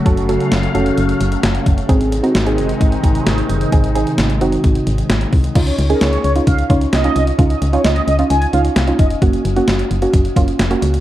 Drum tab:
CC |----------------|----------------|----------------|x---------------|
HH |xxxxxxxxxxxxxxxx|xxxxxxxxxxxxxxxx|xxxxxxxxxxxxxxox|xxxxxxxxxxxxxxxx|
SD |----o-------o---|----o-------o---|----o-------o---|----o-------o---|
BD |o-------------o-|o-------o-o-----|o-------o-----o-|o-------o-o-----|

CC |----------------|----------------|
HH |xxxxxxxxxxxxxxxx|xxxxxxxxxxxxxxxx|
SD |----o-------o---|----o-------o---|
BD |o-------------o-|o-------o-o-----|